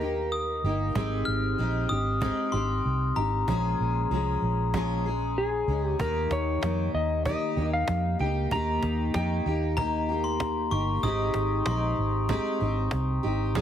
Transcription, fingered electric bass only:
Already playing: D#2
0.64 G1
0.95 G#1
1.27 G#1
1.59 A#1
1.90 G#1
2.53 G#1
2.85 C2
3.16 G#1
3.48 A#1
3.80 A#1
4.10 C2
4.42 A#1
5.67 C#2
5.99 D#2
6.30 D#2
6.62 F2
6.94 D#2
7.57 D#2
7.88 F2
8.20 C#2
8.51 D#2
8.83 D#2
9.15 F2
9.46 D#2
10.72 G1
11.03 G#1
11.34 G#1
11.66 A#1
11.98 G#1
12.61 G#1
12.93 C2
13.24 G#1
13.55 A#1

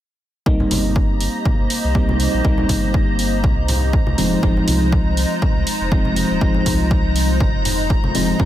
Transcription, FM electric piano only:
0.46 G3 A#3 C4 D#4
1.95 G3 A#3 C4 D#4
2.44 G3 A#3 C4 D#4
4.18 F3 G#3 C4 D#4
4.43 F3 G#3 C4 D#4
5.92 F3 G#3 C4 D#4
6.41 F3 G#3 C4 D#4
8.15 F3 G#3 C4 D#4
8.39 F#3 A#3 C#4 D#4

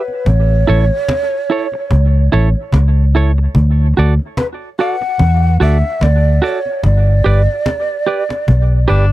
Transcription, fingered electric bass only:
0.27 A1
0.69 A1
1.92 C#2
2.34 A1
2.73 C#2
3.56 D2
3.98 D2
5.20 E2
5.61 D2
6.02 D2
6.85 G1
7.26 G1
8.49 B1
8.90 G1

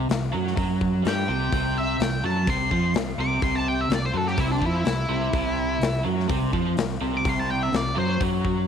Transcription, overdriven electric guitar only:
0.09 C3
0.33 F#3
0.56 F#3
1.04 G3
1.28 C3
1.53 C3
2.01 C3
2.24 F#3
2.48 C3
2.71 F3
2.95 C3
3.19 C3
3.42 C3
3.91 C3
4.14 F#3
4.38 C3
4.62 F3
4.86 C3
5.09 C3
5.34 C3
5.81 C3
6.05 F#3
6.30 C3
6.54 F3
6.79 C3
7.02 C3
7.25 C3
7.73 C3
7.96 F#3
8.21 F#3

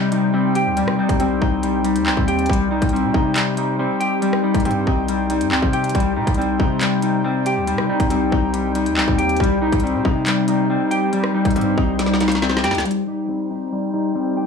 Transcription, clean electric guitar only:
Already playing: G3 D#4
0.12 G3
0.34 G3
0.56 G5
0.77 G3
0.99 G3
1.19 G3
1.41 D#4
1.63 G3
1.84 G3
2.07 G3
2.28 G5
2.49 G3
2.71 G3
2.93 G3
3.14 D#4
3.36 G3
3.58 G3
3.79 G3
4.00 G5
4.22 G3
4.44 G3
4.65 G3
4.87 D#4
5.09 G3
5.30 G3
5.51 G3
5.73 G5
5.94 G3
6.16 G3
6.38 G3
6.60 D#4
6.82 G3
7.03 G3
7.24 G3
7.46 G5
7.68 G3
7.89 G3
8.10 G3
8.32 D#4
8.53 G3
8.75 G3
8.97 G3
9.18 G5
9.40 G3
9.62 G3
9.84 G3
10.05 D#4
10.26 G3
10.49 G3
10.70 G3
10.91 G5
11.13 G3
11.34 G3
11.56 G3
11.77 D#4
12.00 G3
12.21 G3
12.42 G3
12.64 G5
12.85 G3
13.07 G3
13.28 G3
13.51 D#4
13.73 G3
13.93 G3
14.15 G3
14.37 G5

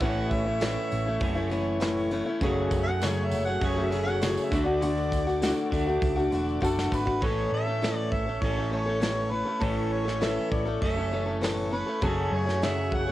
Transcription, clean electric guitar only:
0.00 A2 E3 A3 C#4 E4
1.19 A2 E3 A3 C#4 E4
2.41 F#2 C#3 F#3 A3 C#4 G#4
3.61 F#2 C#3 F#3 A3 C#4 G#4
4.51 D3 A3 D4 F#4
5.71 D3 A3 D4 F#4
7.20 A2 E3 A3 C#4 A4
8.41 A2 E3 A3 C#4 A4
9.59 A2 E3 A3 C#4 A4
10.81 A2 E3 A3 C#4 A4
12.01 F#2 C#3 F#3 A3 C#4 G#4

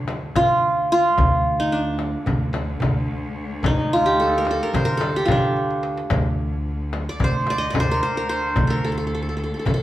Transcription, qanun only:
Already playing: D4
0.36 F4
0.92 F4
1.60 D#4
1.72 D4
3.66 D#4
3.93 F4
4.06 G4
4.20 A4
4.38 A#4
4.51 A4
4.63 A#4
4.75 C5
4.85 A#4
4.97 A4
5.16 G4
5.25 F4
5.32 D4
7.09 D5
7.24 C5
7.50 D5
7.58 D#5
7.70 D5
7.80 C5
7.91 A#4
8.03 C5
8.17 A#4
8.29 C5
8.67 A4 A#4
8.85 A4
8.92 A4
8.98 A4
9.07 A4
9.15 A4
9.23 A4
9.29 A4
9.37 A4
9.44 A4
9.54 A4
9.59 A4
9.67 A4
9.74 A4

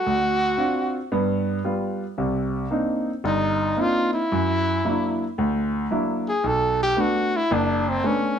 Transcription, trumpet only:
Already playing: F#4
3.27 D#4
3.81 F4
4.14 E4
6.29 G#4
6.48 A4
6.83 G4
7.01 F#4
7.37 E4
7.54 D4
7.89 C4
8.07 C#4

